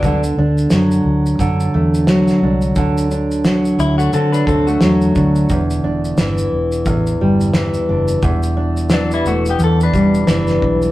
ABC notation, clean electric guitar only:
X:1
M:4/4
L:1/16
Q:"Swing 16ths" 1/4=88
K:Dmix
V:1 name="Clean electric guitar"
[F,D] z12 z3 | z6 E [A,F] [CA] [DB] [CA] [A,F]4- [A,F] | z16 | z4 [F,D] [G,E] [A,F] [B,G] A [DB]6 z |]